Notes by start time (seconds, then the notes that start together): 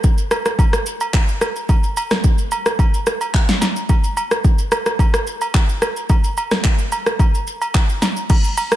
0.04 kick, shaker
0.18 shaker
0.31 cross-stick, high agogo, shaker
0.46 cross-stick, shaker
0.59 kick, high agogo, shaker
0.73 cross-stick, shaker
0.86 shaker
1.01 high agogo, shaker
1.14 kick, clap, shaker
1.28 shaker
1.41 cross-stick, high agogo, shaker
1.56 shaker
1.69 kick, high agogo, shaker
1.83 shaker
1.97 high agogo, shaker
2.11 cross-stick, snare, shaker
2.24 kick, shaker
2.38 shaker
2.51 high agogo, shaker
2.66 cross-stick, shaker
2.79 kick, high agogo, shaker
2.94 shaker
3.07 cross-stick, shaker
3.21 high agogo, shaker
3.34 kick, clap, shaker
3.49 snare, shaker
3.61 snare, high agogo, shaker
3.76 shaker
3.89 kick, high agogo, shaker
4.04 shaker
4.17 high agogo, shaker
4.31 cross-stick, shaker
4.44 kick, shaker
4.59 shaker
4.72 cross-stick, high agogo, shaker
4.86 cross-stick, shaker
4.99 kick, high agogo, shaker
5.14 cross-stick, shaker
5.27 shaker
5.41 high agogo, shaker
5.54 kick, clap, shaker
5.69 shaker
5.82 cross-stick, high agogo, shaker
5.97 shaker
6.10 kick, high agogo, shaker
6.24 shaker
6.37 high agogo, shaker
6.51 cross-stick, snare, shaker
6.64 kick, clap, shaker
6.79 shaker
6.92 high agogo, shaker
7.06 cross-stick, shaker
7.19 kick, high agogo, shaker
7.34 shaker
7.47 shaker
7.61 high agogo, shaker
7.74 kick, clap, shaker
7.89 shaker
8.02 snare, high agogo, shaker
8.17 shaker
8.30 kick, crash, high agogo, shaker
8.44 shaker
8.57 open hi-hat, high agogo, shaker
8.72 cross-stick, shaker